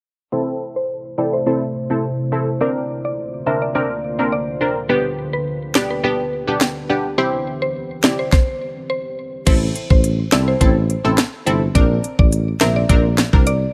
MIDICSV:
0, 0, Header, 1, 6, 480
1, 0, Start_track
1, 0, Key_signature, 0, "minor"
1, 0, Tempo, 571429
1, 272, Time_signature, 4, 2, 24, 8
1, 11536, End_track
2, 0, Start_track
2, 0, Title_t, "Synth pluck"
2, 0, Program_c, 0, 84
2, 272, Note_on_c, 0, 72, 99
2, 350, Note_off_c, 0, 72, 0
2, 639, Note_on_c, 0, 72, 79
2, 709, Note_off_c, 0, 72, 0
2, 992, Note_on_c, 0, 74, 83
2, 1070, Note_off_c, 0, 74, 0
2, 1119, Note_on_c, 0, 72, 71
2, 1189, Note_off_c, 0, 72, 0
2, 1233, Note_on_c, 0, 72, 88
2, 1578, Note_off_c, 0, 72, 0
2, 2193, Note_on_c, 0, 74, 98
2, 2271, Note_off_c, 0, 74, 0
2, 2561, Note_on_c, 0, 74, 85
2, 2630, Note_off_c, 0, 74, 0
2, 2912, Note_on_c, 0, 76, 82
2, 2991, Note_off_c, 0, 76, 0
2, 3040, Note_on_c, 0, 74, 71
2, 3109, Note_off_c, 0, 74, 0
2, 3152, Note_on_c, 0, 74, 95
2, 3497, Note_off_c, 0, 74, 0
2, 3632, Note_on_c, 0, 74, 82
2, 3977, Note_off_c, 0, 74, 0
2, 4111, Note_on_c, 0, 71, 99
2, 4190, Note_off_c, 0, 71, 0
2, 4480, Note_on_c, 0, 71, 84
2, 4549, Note_off_c, 0, 71, 0
2, 4833, Note_on_c, 0, 74, 86
2, 4911, Note_off_c, 0, 74, 0
2, 4960, Note_on_c, 0, 71, 71
2, 5029, Note_off_c, 0, 71, 0
2, 5073, Note_on_c, 0, 71, 80
2, 5418, Note_off_c, 0, 71, 0
2, 6032, Note_on_c, 0, 72, 101
2, 6111, Note_off_c, 0, 72, 0
2, 6400, Note_on_c, 0, 72, 82
2, 6470, Note_off_c, 0, 72, 0
2, 6753, Note_on_c, 0, 74, 84
2, 6831, Note_off_c, 0, 74, 0
2, 6880, Note_on_c, 0, 72, 71
2, 6949, Note_off_c, 0, 72, 0
2, 6992, Note_on_c, 0, 72, 92
2, 7337, Note_off_c, 0, 72, 0
2, 7473, Note_on_c, 0, 72, 80
2, 7818, Note_off_c, 0, 72, 0
2, 7952, Note_on_c, 0, 72, 97
2, 8030, Note_off_c, 0, 72, 0
2, 8320, Note_on_c, 0, 72, 81
2, 8390, Note_off_c, 0, 72, 0
2, 8673, Note_on_c, 0, 74, 87
2, 8751, Note_off_c, 0, 74, 0
2, 8801, Note_on_c, 0, 72, 72
2, 8870, Note_off_c, 0, 72, 0
2, 8913, Note_on_c, 0, 72, 84
2, 9258, Note_off_c, 0, 72, 0
2, 9874, Note_on_c, 0, 74, 101
2, 9952, Note_off_c, 0, 74, 0
2, 10240, Note_on_c, 0, 74, 82
2, 10309, Note_off_c, 0, 74, 0
2, 10593, Note_on_c, 0, 76, 87
2, 10671, Note_off_c, 0, 76, 0
2, 10720, Note_on_c, 0, 74, 73
2, 10789, Note_off_c, 0, 74, 0
2, 10832, Note_on_c, 0, 74, 88
2, 11177, Note_off_c, 0, 74, 0
2, 11313, Note_on_c, 0, 74, 83
2, 11536, Note_off_c, 0, 74, 0
2, 11536, End_track
3, 0, Start_track
3, 0, Title_t, "Ambient pad"
3, 0, Program_c, 1, 92
3, 273, Note_on_c, 1, 48, 76
3, 273, Note_on_c, 1, 57, 69
3, 273, Note_on_c, 1, 64, 67
3, 274, Note_on_c, 1, 72, 81
3, 2173, Note_off_c, 1, 48, 0
3, 2173, Note_off_c, 1, 64, 0
3, 2174, Note_off_c, 1, 57, 0
3, 2174, Note_off_c, 1, 72, 0
3, 2191, Note_on_c, 1, 58, 67
3, 2191, Note_on_c, 1, 65, 69
3, 2191, Note_on_c, 1, 72, 83
3, 2192, Note_on_c, 1, 50, 74
3, 4093, Note_off_c, 1, 58, 0
3, 4093, Note_off_c, 1, 65, 0
3, 4093, Note_off_c, 1, 72, 0
3, 4114, Note_on_c, 1, 59, 68
3, 4114, Note_on_c, 1, 67, 72
3, 4114, Note_on_c, 1, 71, 84
3, 5998, Note_off_c, 1, 50, 0
3, 6014, Note_off_c, 1, 59, 0
3, 6014, Note_off_c, 1, 71, 0
3, 6032, Note_on_c, 1, 60, 68
3, 6033, Note_on_c, 1, 52, 72
3, 6033, Note_on_c, 1, 72, 81
3, 6964, Note_off_c, 1, 67, 0
3, 6982, Note_off_c, 1, 60, 0
3, 6983, Note_off_c, 1, 52, 0
3, 6983, Note_off_c, 1, 72, 0
3, 11536, End_track
4, 0, Start_track
4, 0, Title_t, "Synth stab"
4, 0, Program_c, 2, 62
4, 270, Note_on_c, 2, 60, 91
4, 273, Note_on_c, 2, 64, 83
4, 275, Note_on_c, 2, 69, 98
4, 937, Note_off_c, 2, 60, 0
4, 938, Note_off_c, 2, 64, 0
4, 940, Note_off_c, 2, 69, 0
4, 989, Note_on_c, 2, 60, 78
4, 991, Note_on_c, 2, 64, 67
4, 994, Note_on_c, 2, 69, 79
4, 1213, Note_off_c, 2, 60, 0
4, 1214, Note_off_c, 2, 64, 0
4, 1215, Note_off_c, 2, 69, 0
4, 1229, Note_on_c, 2, 60, 92
4, 1232, Note_on_c, 2, 64, 88
4, 1234, Note_on_c, 2, 69, 100
4, 1369, Note_off_c, 2, 60, 0
4, 1371, Note_off_c, 2, 64, 0
4, 1372, Note_off_c, 2, 69, 0
4, 1597, Note_on_c, 2, 60, 71
4, 1599, Note_on_c, 2, 64, 67
4, 1601, Note_on_c, 2, 69, 78
4, 1724, Note_off_c, 2, 60, 0
4, 1725, Note_off_c, 2, 64, 0
4, 1726, Note_off_c, 2, 69, 0
4, 1949, Note_on_c, 2, 60, 75
4, 1951, Note_on_c, 2, 64, 71
4, 1954, Note_on_c, 2, 69, 83
4, 2089, Note_off_c, 2, 60, 0
4, 2091, Note_off_c, 2, 64, 0
4, 2092, Note_off_c, 2, 69, 0
4, 2189, Note_on_c, 2, 60, 88
4, 2192, Note_on_c, 2, 62, 81
4, 2195, Note_on_c, 2, 70, 101
4, 2857, Note_off_c, 2, 60, 0
4, 2858, Note_off_c, 2, 62, 0
4, 2859, Note_off_c, 2, 70, 0
4, 2909, Note_on_c, 2, 60, 75
4, 2913, Note_on_c, 2, 62, 68
4, 2915, Note_on_c, 2, 70, 82
4, 3133, Note_off_c, 2, 60, 0
4, 3134, Note_off_c, 2, 62, 0
4, 3136, Note_off_c, 2, 70, 0
4, 3150, Note_on_c, 2, 60, 92
4, 3153, Note_on_c, 2, 62, 82
4, 3154, Note_on_c, 2, 70, 100
4, 3290, Note_off_c, 2, 60, 0
4, 3291, Note_off_c, 2, 62, 0
4, 3292, Note_off_c, 2, 70, 0
4, 3518, Note_on_c, 2, 60, 76
4, 3520, Note_on_c, 2, 62, 65
4, 3523, Note_on_c, 2, 70, 84
4, 3644, Note_off_c, 2, 60, 0
4, 3645, Note_off_c, 2, 62, 0
4, 3647, Note_off_c, 2, 70, 0
4, 3870, Note_on_c, 2, 60, 75
4, 3872, Note_on_c, 2, 62, 68
4, 3876, Note_on_c, 2, 70, 84
4, 4010, Note_off_c, 2, 60, 0
4, 4011, Note_off_c, 2, 62, 0
4, 4013, Note_off_c, 2, 70, 0
4, 4109, Note_on_c, 2, 59, 88
4, 4112, Note_on_c, 2, 62, 82
4, 4115, Note_on_c, 2, 67, 101
4, 4777, Note_off_c, 2, 59, 0
4, 4778, Note_off_c, 2, 62, 0
4, 4779, Note_off_c, 2, 67, 0
4, 4830, Note_on_c, 2, 59, 77
4, 4833, Note_on_c, 2, 62, 72
4, 4835, Note_on_c, 2, 67, 85
4, 5053, Note_off_c, 2, 59, 0
4, 5055, Note_off_c, 2, 62, 0
4, 5056, Note_off_c, 2, 67, 0
4, 5070, Note_on_c, 2, 59, 89
4, 5073, Note_on_c, 2, 62, 84
4, 5076, Note_on_c, 2, 67, 106
4, 5210, Note_off_c, 2, 59, 0
4, 5211, Note_off_c, 2, 62, 0
4, 5213, Note_off_c, 2, 67, 0
4, 5439, Note_on_c, 2, 59, 78
4, 5441, Note_on_c, 2, 62, 68
4, 5444, Note_on_c, 2, 67, 82
4, 5565, Note_off_c, 2, 59, 0
4, 5566, Note_off_c, 2, 62, 0
4, 5568, Note_off_c, 2, 67, 0
4, 5792, Note_on_c, 2, 59, 75
4, 5794, Note_on_c, 2, 62, 71
4, 5796, Note_on_c, 2, 67, 88
4, 5931, Note_off_c, 2, 59, 0
4, 5932, Note_off_c, 2, 62, 0
4, 5933, Note_off_c, 2, 67, 0
4, 6030, Note_on_c, 2, 60, 94
4, 6033, Note_on_c, 2, 64, 84
4, 6035, Note_on_c, 2, 67, 96
4, 6697, Note_off_c, 2, 60, 0
4, 6698, Note_off_c, 2, 64, 0
4, 6699, Note_off_c, 2, 67, 0
4, 6750, Note_on_c, 2, 60, 76
4, 6752, Note_on_c, 2, 64, 66
4, 6754, Note_on_c, 2, 67, 80
4, 6973, Note_off_c, 2, 60, 0
4, 6974, Note_off_c, 2, 64, 0
4, 6975, Note_off_c, 2, 67, 0
4, 7950, Note_on_c, 2, 60, 91
4, 7953, Note_on_c, 2, 64, 84
4, 7956, Note_on_c, 2, 69, 102
4, 8617, Note_off_c, 2, 60, 0
4, 8619, Note_off_c, 2, 64, 0
4, 8620, Note_off_c, 2, 69, 0
4, 8671, Note_on_c, 2, 60, 76
4, 8673, Note_on_c, 2, 64, 74
4, 8676, Note_on_c, 2, 69, 82
4, 8893, Note_off_c, 2, 60, 0
4, 8895, Note_off_c, 2, 64, 0
4, 8896, Note_off_c, 2, 69, 0
4, 8910, Note_on_c, 2, 60, 93
4, 8913, Note_on_c, 2, 64, 86
4, 8915, Note_on_c, 2, 69, 108
4, 9050, Note_off_c, 2, 60, 0
4, 9051, Note_off_c, 2, 64, 0
4, 9052, Note_off_c, 2, 69, 0
4, 9278, Note_on_c, 2, 60, 76
4, 9280, Note_on_c, 2, 64, 68
4, 9283, Note_on_c, 2, 69, 83
4, 9404, Note_off_c, 2, 60, 0
4, 9405, Note_off_c, 2, 64, 0
4, 9407, Note_off_c, 2, 69, 0
4, 9630, Note_on_c, 2, 60, 76
4, 9632, Note_on_c, 2, 64, 73
4, 9634, Note_on_c, 2, 69, 84
4, 9770, Note_off_c, 2, 60, 0
4, 9771, Note_off_c, 2, 64, 0
4, 9772, Note_off_c, 2, 69, 0
4, 9869, Note_on_c, 2, 60, 91
4, 9871, Note_on_c, 2, 62, 86
4, 9874, Note_on_c, 2, 70, 99
4, 10536, Note_off_c, 2, 60, 0
4, 10537, Note_off_c, 2, 62, 0
4, 10539, Note_off_c, 2, 70, 0
4, 10589, Note_on_c, 2, 60, 76
4, 10592, Note_on_c, 2, 62, 71
4, 10594, Note_on_c, 2, 70, 86
4, 10813, Note_off_c, 2, 60, 0
4, 10814, Note_off_c, 2, 62, 0
4, 10815, Note_off_c, 2, 70, 0
4, 10830, Note_on_c, 2, 60, 98
4, 10832, Note_on_c, 2, 62, 88
4, 10835, Note_on_c, 2, 70, 104
4, 10970, Note_off_c, 2, 60, 0
4, 10971, Note_off_c, 2, 62, 0
4, 10972, Note_off_c, 2, 70, 0
4, 11197, Note_on_c, 2, 60, 73
4, 11200, Note_on_c, 2, 62, 71
4, 11202, Note_on_c, 2, 70, 86
4, 11324, Note_off_c, 2, 60, 0
4, 11325, Note_off_c, 2, 62, 0
4, 11326, Note_off_c, 2, 70, 0
4, 11536, End_track
5, 0, Start_track
5, 0, Title_t, "Tuba"
5, 0, Program_c, 3, 58
5, 7953, Note_on_c, 3, 33, 97
5, 8145, Note_off_c, 3, 33, 0
5, 8319, Note_on_c, 3, 33, 83
5, 8602, Note_off_c, 3, 33, 0
5, 8672, Note_on_c, 3, 36, 90
5, 8864, Note_off_c, 3, 36, 0
5, 8912, Note_on_c, 3, 33, 95
5, 9206, Note_off_c, 3, 33, 0
5, 9278, Note_on_c, 3, 33, 86
5, 9369, Note_off_c, 3, 33, 0
5, 9632, Note_on_c, 3, 31, 86
5, 9824, Note_off_c, 3, 31, 0
5, 9872, Note_on_c, 3, 34, 108
5, 10064, Note_off_c, 3, 34, 0
5, 10238, Note_on_c, 3, 33, 93
5, 10521, Note_off_c, 3, 33, 0
5, 10593, Note_on_c, 3, 34, 95
5, 10785, Note_off_c, 3, 34, 0
5, 10831, Note_on_c, 3, 34, 100
5, 11126, Note_off_c, 3, 34, 0
5, 11199, Note_on_c, 3, 36, 82
5, 11482, Note_off_c, 3, 36, 0
5, 11536, End_track
6, 0, Start_track
6, 0, Title_t, "Drums"
6, 4831, Note_on_c, 9, 38, 109
6, 4915, Note_off_c, 9, 38, 0
6, 5552, Note_on_c, 9, 38, 116
6, 5636, Note_off_c, 9, 38, 0
6, 6751, Note_on_c, 9, 38, 110
6, 6835, Note_off_c, 9, 38, 0
6, 6992, Note_on_c, 9, 38, 90
6, 6993, Note_on_c, 9, 36, 105
6, 7076, Note_off_c, 9, 38, 0
6, 7077, Note_off_c, 9, 36, 0
6, 7952, Note_on_c, 9, 42, 74
6, 7952, Note_on_c, 9, 49, 91
6, 7953, Note_on_c, 9, 36, 102
6, 8036, Note_off_c, 9, 42, 0
6, 8036, Note_off_c, 9, 49, 0
6, 8037, Note_off_c, 9, 36, 0
6, 8194, Note_on_c, 9, 42, 54
6, 8278, Note_off_c, 9, 42, 0
6, 8319, Note_on_c, 9, 36, 93
6, 8403, Note_off_c, 9, 36, 0
6, 8433, Note_on_c, 9, 42, 75
6, 8517, Note_off_c, 9, 42, 0
6, 8671, Note_on_c, 9, 38, 108
6, 8672, Note_on_c, 9, 42, 58
6, 8755, Note_off_c, 9, 38, 0
6, 8756, Note_off_c, 9, 42, 0
6, 8912, Note_on_c, 9, 36, 91
6, 8912, Note_on_c, 9, 42, 69
6, 8996, Note_off_c, 9, 36, 0
6, 8996, Note_off_c, 9, 42, 0
6, 9154, Note_on_c, 9, 42, 51
6, 9238, Note_off_c, 9, 42, 0
6, 9391, Note_on_c, 9, 38, 113
6, 9392, Note_on_c, 9, 42, 70
6, 9475, Note_off_c, 9, 38, 0
6, 9476, Note_off_c, 9, 42, 0
6, 9633, Note_on_c, 9, 42, 45
6, 9717, Note_off_c, 9, 42, 0
6, 9872, Note_on_c, 9, 36, 97
6, 9873, Note_on_c, 9, 42, 75
6, 9956, Note_off_c, 9, 36, 0
6, 9957, Note_off_c, 9, 42, 0
6, 10115, Note_on_c, 9, 42, 53
6, 10199, Note_off_c, 9, 42, 0
6, 10239, Note_on_c, 9, 36, 91
6, 10323, Note_off_c, 9, 36, 0
6, 10353, Note_on_c, 9, 42, 73
6, 10437, Note_off_c, 9, 42, 0
6, 10591, Note_on_c, 9, 38, 108
6, 10592, Note_on_c, 9, 42, 57
6, 10675, Note_off_c, 9, 38, 0
6, 10676, Note_off_c, 9, 42, 0
6, 10832, Note_on_c, 9, 36, 93
6, 10832, Note_on_c, 9, 42, 67
6, 10916, Note_off_c, 9, 36, 0
6, 10916, Note_off_c, 9, 42, 0
6, 11073, Note_on_c, 9, 38, 115
6, 11074, Note_on_c, 9, 42, 53
6, 11157, Note_off_c, 9, 38, 0
6, 11158, Note_off_c, 9, 42, 0
6, 11199, Note_on_c, 9, 36, 93
6, 11283, Note_off_c, 9, 36, 0
6, 11312, Note_on_c, 9, 42, 69
6, 11396, Note_off_c, 9, 42, 0
6, 11536, End_track
0, 0, End_of_file